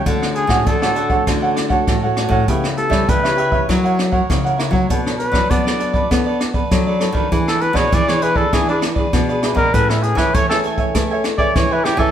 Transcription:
<<
  \new Staff \with { instrumentName = "Cavaquinho" } { \time 4/4 \key a \major \tempo 4 = 99 <d' a' cis'' fis''>8 r16 <a' cis'' fis''>16 <d' a' cis'' fis''>16 <a' cis'' fis''>16 <d' a' cis'' fis''>16 <a' cis'' fis''>16 <d' a' cis'' fis''>16 <a' cis'' fis''>16 r16 <a' cis'' fis''>8 <a' cis'' fis''>16 <d' a' cis'' fis''>16 <a' cis'' fis''>16 | <g' b' cis'' e''>8 r16 <b' cis'' e''>16 <g' b' cis'' e''>16 <b' cis'' e''>16 <g' b' cis'' e''>16 <b' cis'' e''>16 <e' ais' cis'' fis''>16 <ais' cis'' fis''>16 r16 <ais' cis'' fis''>8 <ais' cis'' fis''>16 <e' ais' cis'' fis''>16 <ais' cis'' fis''>16 | <d' a' b' d''>8 r16 <a' b' d''>16 <d' a' b' d''>16 <a' b' d''>16 <d' a' b' d''>16 <a' b' d''>16 <d' a' b'>16 <a' b' d''>16 r16 <a' b' d''>8 <a' b' d''>16 <d' a' b' d''>16 <a' b' d''>16 | <e' gis' b' d''>8 r16 <gis' b' d''>16 <e' gis' d''>16 <gis' b' d''>16 <e' gis' b' d''>16 <gis' b' d''>16 <e' gis' b' d''>16 <gis' b' d''>16 r16 <gis' b' d''>8 <gis' b' d''>16 <e' gis' b' d''>16 <gis' b' d''>16 |
<a' cis'' e'' gis''>8 r16 <cis'' e'' gis''>16 <a' cis'' e'' gis''>16 <cis'' e'' gis''>16 <a' cis'' e'' gis''>16 <cis'' e'' gis''>16 <a' cis'' e'' gis''>16 <cis'' e'' gis''>16 r16 <cis'' e'' gis''>8 <cis'' e'' gis''>16 <a' cis'' e'' gis''>16 <cis'' e'' gis''>16 | }
  \new Staff \with { instrumentName = "Trumpet" } { \time 4/4 \key a \major r8 gis'8 a'4 r2 | r8 a'8 b'4 r2 | r8 b'8 d''4 r2 | r16 a'16 b'16 cis''16 d''16 cis''16 b'16 a'16 gis'16 d'16 r4 r16 bes'16 |
b'16 e'16 gis'16 b'16 cis''16 a'16 r4 r16 d''16 cis''16 b'16 g'16 a'16 | }
  \new Staff \with { instrumentName = "Nylon-string guitar" } { \time 4/4 \key a \major << { <a cis' fis'>8. <a cis' fis'>8 <a cis' fis'>8. <a cis' fis'>8. <a cis' fis'>8 <a cis' fis'>8. | <b e' g'>16 r16 <b e' g'>8 r16 <b e' g'>8. <e' ais' cis''>8. r16 <e' ais' cis''>8 <e' ais' cis''>16 r16 | <d' a' cis''>16 <d' a' cis''>16 <d' a' cis''>8 r16 <d' a'>8. <d' a' cis''>8. r16 <d' a' cis''>8 <d' a' cis''>8 | <b d' gis'>16 r16 <b d' gis'>8. <b d' gis'>8. <b d' gis'>8 <b d' gis'>8 <b d' gis'>8 <b d' gis'>8 |
<cis' gis' b'>8 <cis' gis' b'>8. <cis' gis' b'>8. <cis' gis' b'>8. <cis' gis' b'>16 <cis' gis' b'>8 <cis' gis' b'>16 <cis' gis' b'>16 | } \\ { d4 a,4 d4 a,4 | cis4 cis4 fis4 cis4 | b4 fis4 b4 fis4 | e4 b,4 e4 b,4 |
a4 e4 a4 e4 | } >> }
  \new Staff \with { instrumentName = "Nylon-string guitar" } { \clef bass \time 4/4 \key a \major d8. a,16 d4 d4 a,8. a,16 | cis8. g16 cis4 fis4 cis8. fis16 | b,8. fis16 b4 b4 fis8. dis16 | e8. b,16 e4 e4 b,8. b,16 |
a,8. e16 a4 a4 e8. e16 | }
  \new DrumStaff \with { instrumentName = "Drums" } \drummode { \time 4/4 <hh bd>16 ss16 hh16 <hh bd ss>16 <hh bd>16 ss16 hh16 <hh bd>16 <hh bd ss>8 <hh ss>16 <hh bd>16 <hh bd ss>8 <hh ss>16 bd16 | <hh bd>16 <hh ss>16 hh16 <bd ss>16 <hh bd>16 <hh ss>16 hh16 bd16 <hh bd ss>16 hh16 <hh ss>16 bd16 <hh bd ss>16 hh16 <hh ss>16 bd16 | <hh bd>16 ss16 hh16 <hh bd ss>16 <hh bd>16 ss16 hh16 <hh bd>16 <hh bd ss>8 <hh ss>16 <hh bd>16 <hh bd ss>8 <hh ss>16 bd16 | <hh bd>16 <hh ss>16 hh16 <bd ss>16 <hh bd>16 <hh ss>16 hh16 bd16 <hh bd ss>16 hh16 <hh ss>16 bd16 <hh bd ss>16 hh16 <hh ss>16 bd16 |
<hh bd>16 ss16 hh16 <hh bd ss>16 <hh bd>16 ss16 hh16 <hh bd>16 <hh bd ss>8 <hh ss>16 <hh bd>16 <hh bd ss>8 <hh ss>16 bd16 | }
>>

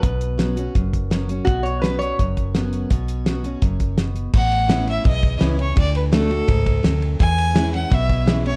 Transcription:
<<
  \new Staff \with { instrumentName = "Fiddle" } { \time 4/4 \key b \mixolydian \tempo 4 = 168 r1 | r1 | r1 | fis''4. e''8 dis''4 r8 cis''8 |
d''8 b'8 a'2~ a'8 r8 | gis''4. fis''8 e''4 r8 cis''8 | }
  \new Staff \with { instrumentName = "Resonator guitar played with a steel bar" } { \time 4/4 \key b \mixolydian b'2.~ b'8 r8 | fis'8 cis''8 b'8 cis''2~ cis''8~ | cis''2. r4 | r1 |
r1 | r1 | }
  \new Staff \with { instrumentName = "Steel-string acoustic guitar" } { \time 4/4 \key b \mixolydian << { r4 <fis b cis' fis'>8 <cis' fis'>8 r4 <fis b cis' fis'>8 <cis' fis'>8 | r4 <fis b cis' fis'>4 r4 <fis b cis' fis'>4 | r4 <fis b cis' fis'>8 <cis' fis'>8 r2 | r4 <e b cis' e'>8 <cis' e'>8 r4 <e b cis' e'>8 <cis' e'>8 |
r4 <d a d' fis'>8 <d' fis'>8 r2 | r4 <e gis cis' e'>8 <cis' e'>8 r4 <e gis cis' e'>8 <cis' e'>8 | } \\ { b,2 fis,2 | b,2 fis,2 | b,2 fis,4 b,4 | a,2 e,2 |
d2 gis,4 fis,4 | e,2 b,2 | } >> }
  \new Staff \with { instrumentName = "Fingered electric bass" } { \clef bass \time 4/4 \key b \mixolydian b,,2 fis,,2 | b,,2 fis,,2 | b,,2 fis,,2 | a,,2 b,,4 cis,4 |
d,2 cis,4 d,4 | e,2 b,,2 | }
  \new DrumStaff \with { instrumentName = "Drums" } \drummode { \time 4/4 <hh bd>8 hh8 <hh sn>8 hh8 <hh bd>8 <hh bd>8 <hh sn>8 hh8 | <hh bd>8 hh8 <hh sn>8 hh8 <hh bd>8 <hh bd>8 <hh sn>8 hh8 | <hh bd>8 hh8 <hh sn>8 hh8 <hh bd>8 <hh bd>8 <hh sn>8 hh8 | <cymc bd>8 cymr8 <cymr sn>8 cymr8 <bd cymr>8 <bd cymr>8 <cymr sn>8 cymr8 |
<bd cymr>8 cymr8 <cymr sn>8 cymr8 <bd cymr>8 <bd cymr>8 <cymr sn>8 cymr8 | <bd cymr>8 cymr8 <cymr sn>8 cymr8 <bd cymr>8 <bd cymr>8 <cymr sn>8 cymr8 | }
>>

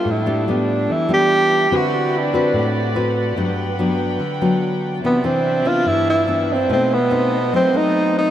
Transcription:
<<
  \new Staff \with { instrumentName = "Violin section" } { \time 4/4 \key g \major \tempo 4 = 144 << { a1 | <c' e' d''>1 | g''1 | \key c \major <d' e''>1 |
<c'' dis''>1 | } \\ { <g d' b'>1 | <b' fis''>1~ | <b' fis''>1 | <b' d''>1 |
a'1 | } >> }
  \new Staff \with { instrumentName = "Tenor saxophone" } { \time 4/4 \key g \major e'4 d'4 e'8 g'4. | fis'4 d'4. r4. | r1 | \key c \major b8 c'4 f'8 e'8 e'4 c'8 |
c'8 b4. c'8 dis'4 dis'8 | }
  \new Staff \with { instrumentName = "Nylon-string guitar" } { \time 4/4 \key g \major << { <g b d'>8 <g b d'>8 <g b d'>4. <g b d'>4. | <c' fis' b'>4. <c' fis' b'>4. <c' fis' b'>4 | <fis b d'>4 <fis b d'>4 r8 <fis b d'>4. | \key c \major <e b d'>8 <e d'>4 <e b d'>4. <e b d'>8 r8 |
<a c' dis'>8 r8 <a c' dis'>8 r8 <a c' dis'>8 <a c' dis'>4. | } \\ { a,2 e2 | d2 a,2 | g,2 d2 | c2 g,2 |
b,2 fis2 | } >> }
>>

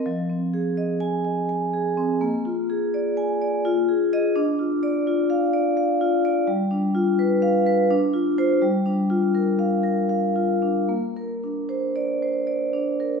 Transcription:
\new Staff \with { instrumentName = "Vibraphone" } { \time 3/4 \key bes \mixolydian \tempo 4 = 83 << { r4 \tuplet 3/2 { r8 aes''4 } r4 | r4 \tuplet 3/2 { r8 aes''4 r4 ees''8 } | r4 \tuplet 3/2 { r8 f''4 } r4 | r4 \tuplet 3/2 { r8 f''4 r4 c''8 } |
r4 \tuplet 3/2 { r8 f''4 } r4 | r4 \tuplet 3/2 { r8 d''4 } r4 | } \\ { \tuplet 3/2 { f8 c'8 aes'8 ees''4 ees''8 aes''8 aes'8 c'8 } | \tuplet 3/2 { bes8 f'8 aes'8 d''4 d''8 f'8 aes'8 aes'8 } | \tuplet 3/2 { d'8 f'8 d''8 f'4 d''8 f''8 f'8 d''8 } | \tuplet 3/2 { g8 d'8 f'8 b'4 b'8 d'8 f'8 f'8 } |
\tuplet 3/2 { g8 d'8 f'8 bes'4 bes'8 f''8 f'8 d'8 } | \tuplet 3/2 { bes8 bes'8 d'8 c''4 c''8 d''8 d'8 bes'8 } | } >> }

